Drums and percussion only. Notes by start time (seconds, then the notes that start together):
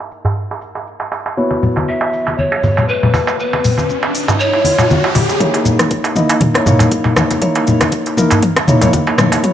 0.00 darbuka tek
0.11 open hi-hat, shaker
0.25 darbuka ka, darbuka tek, darbuka dum, shaker
0.37 shaker
0.51 darbuka tek
0.61 open hi-hat, shaker
0.75 darbuka tek, shaker
0.87 shaker
1.00 darbuka tek
1.12 open hi-hat, darbuka ka, shaker
1.26 darbuka tek, shaker
1.38 shaker
1.51 muted conga, darbuka tek
1.63 open hi-hat, low conga, shaker
1.76 darbuka ka, darbuka tek, high conga, shaker
1.88 muted conga, shaker
2.01 darbuka tek
2.13 open hi-hat, shaker
2.27 darbuka ka, muted conga, darbuka tek, shaker
2.38 high conga, shaker
2.52 darbuka ka, darbuka tek
2.63 open hi-hat, high conga, darbuka dum, shaker
2.77 muted conga, darbuka tek, low conga, shaker
2.89 shaker
3.03 darbuka tek, low conga
3.14 open hi-hat, darbuka ka, muted conga, high conga, shaker
3.27 darbuka tek, shaker
3.40 shaker
3.53 muted conga, darbuka tek
3.64 open hi-hat, low conga, shaker
3.78 darbuka ka, darbuka tek, high conga, shaker
3.89 muted conga, shaker
4.03 darbuka tek
4.15 open hi-hat, shaker
4.28 darbuka ka, muted conga, darbuka tek, darbuka dum, shaker
4.40 shaker
4.53 darbuka tek
4.64 open hi-hat, high conga, shaker
4.79 muted conga, darbuka tek, low conga, shaker
4.91 high conga, shaker
5.04 darbuka tek
5.15 open hi-hat, darbuka ka, muted conga, high conga, low conga, shaker
5.29 darbuka tek, shaker
5.40 kick, closed hi-hat, mid tom, shaker
5.54 closed hi-hat, darbuka tek
5.65 muted conga, low conga, shaker
5.79 cross-stick, closed hi-hat, mid tom, darbuka ka, darbuka tek, shaker
5.91 kick, closed hi-hat, muted conga, shaker
6.04 closed hi-hat, darbuka tek
6.16 mid tom, muted conga, shaker
6.29 closed hi-hat, darbuka ka, darbuka tek, shaker
6.41 kick, closed hi-hat, mid tom, high conga, shaker
6.54 cross-stick, closed hi-hat, darbuka ka, muted conga, darbuka tek
6.66 mid tom, high conga, darbuka dum, shaker
6.79 closed hi-hat, muted conga, darbuka tek, low conga, shaker
6.92 kick, closed hi-hat, shaker
7.04 muted conga, darbuka tek, low conga
7.16 cross-stick, mid tom, darbuka ka, high conga, shaker
7.31 closed hi-hat, muted conga, darbuka tek, shaker
7.42 kick, closed hi-hat, mid tom, shaker
7.55 closed hi-hat, darbuka tek
7.67 muted conga, low conga, shaker
7.81 cross-stick, closed hi-hat, darbuka ka, darbuka tek, high conga, shaker
7.92 kick, closed hi-hat, muted conga, shaker
8.06 closed hi-hat, darbuka tek
8.17 mid tom, muted conga, shaker
8.31 closed hi-hat, darbuka ka, darbuka tek, darbuka dum, shaker
8.43 kick, closed hi-hat, mid tom, shaker
8.56 cross-stick, closed hi-hat, muted conga, darbuka tek
8.68 mid tom, high conga, shaker
8.81 closed hi-hat, mid tom, muted conga, darbuka tek, low conga, shaker
8.93 kick, closed hi-hat, high conga, shaker
9.07 muted conga, darbuka tek
9.18 cross-stick, mid tom, darbuka ka, high conga, low conga, shaker
9.32 closed hi-hat, muted conga, darbuka tek, shaker
9.44 kick, closed hi-hat, mid tom, shaker